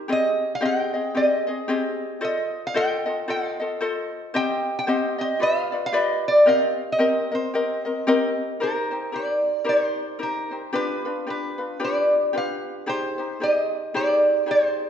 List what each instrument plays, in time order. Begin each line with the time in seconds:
0.08 ukulele C4 G4 G#4 D#5
0.12 resonator guitar played with a steel bar D#5
0.55 resonator guitar played with a steel bar F5
0.61 ukulele C4 G4 G#4 D#5
0.65 resonator guitar played with a steel bar G5
0.94 ukulele C4 G#4 D#5
1.15 ukulele C4 G4 G#4 D#5, resonator guitar played with a steel bar D#5
1.47 ukulele C4 G#4 D#5
1.68 ukulele C4 G4 G#4 D#5
2.21 ukulele F4 A4 C5 D#5, resonator guitar played with a steel bar D#5
2.67 resonator guitar played with a steel bar F5
2.74 ukulele F4 A4 C5 D#5, resonator guitar played with a steel bar G5
3.06 ukulele F4 A4 D#5
3.28 ukulele F4 A4 C5 D#5, resonator guitar played with a steel bar F5
3.60 ukulele F4 A4 D#5
3.81 ukulele F4 A4 C5 D#5
4.34 ukulele C4 G4 C5 D#5, resonator guitar played with a steel bar G5
4.79 resonator guitar played with a steel bar F5
4.87 ukulele C4 G4 C5 D#5
5.18 ukulele C4 G4 D#5, resonator guitar played with a steel bar D#5
5.39 ukulele F4 G4 B4 D5, resonator guitar played with a steel bar F5
5.72 ukulele F4 B4 D5
5.86 resonator guitar played with a steel bar D#5
5.93 ukulele F4 G4 B4 D5
6.28 resonator guitar played with a steel bar D5
6.46 ukulele C4 G4 A#4 D#5, resonator guitar played with a steel bar F5
6.92 resonator guitar played with a steel bar D#5
6.99 ukulele C4 G4 A#4 D#5
7.32 ukulele C4 A#4 D#5, resonator guitar played with a steel bar C5
7.54 ukulele C4 G4 A#4 D#5
7.85 ukulele C4 A#4 D#5
8.07 ukulele C4 G4 A#4 D#5
8.60 ukulele D#4 G4 A#4 C5, resonator guitar played with a steel bar A#4
8.91 ukulele D#4 G4 C5
9.12 ukulele D#4 G4 A#4 C5, resonator guitar played with a steel bar D5
9.65 ukulele D#4 G4 A#4 C5
9.69 resonator guitar played with a steel bar C5
10.19 ukulele D#4 G4 A#4 C5
10.23 resonator guitar played with a steel bar A#4
10.51 ukulele D#4 G4 C5
10.73 ukulele D4 F4 G4 B4, resonator guitar played with a steel bar B4
11.05 ukulele D4 F4 B4
11.27 ukulele D4 F4 G4 B4, resonator guitar played with a steel bar B4
11.58 ukulele D4 F4 B4
11.80 ukulele D4 F4 G4 B4
11.84 resonator guitar played with a steel bar D5
12.33 ukulele D4 F4 G4 B4
12.38 resonator guitar played with a steel bar F5
12.86 ukulele D#4 G4 G#4 C5, resonator guitar played with a steel bar C5
13.18 ukulele D#4 G4 C5
13.40 ukulele D#4 G4 G#4 C5, resonator guitar played with a steel bar D#5
13.94 ukulele D#4 G4 G#4 C5, resonator guitar played with a steel bar D5
14.46 ukulele D#4 G4 G#4 C5
14.51 resonator guitar played with a steel bar C5